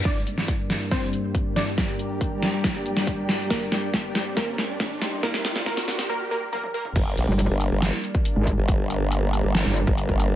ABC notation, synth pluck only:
X:1
M:4/4
L:1/8
Q:1/4=139
K:Gm
V:1 name="Synth pluck"
[Dd]4 [Cc]3 [Dd]- | [Dd]8 | [B,B]4 [B,B]4 | [B,B]2 [B,B]2 [B,B] [B,B] [B,B] [B,B] |
z8 | z8 |]